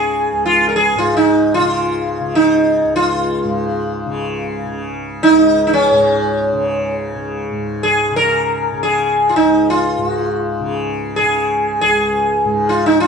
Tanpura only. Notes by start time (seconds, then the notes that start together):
Already playing: C#2 G#2 C#3
0.32 C#2
0.96 G#2
1.59 C#3
2.21 C#3
2.84 C#2
3.44 G#2
4.06 C#3
4.67 C#3
5.30 C#2
5.92 G#2
6.53 C#3
7.16 C#3
7.51 G#2
8.11 C#3
8.73 C#3
9.36 C#2
9.97 G#2
10.60 C#3
11.22 C#3
11.83 C#2
12.45 G#2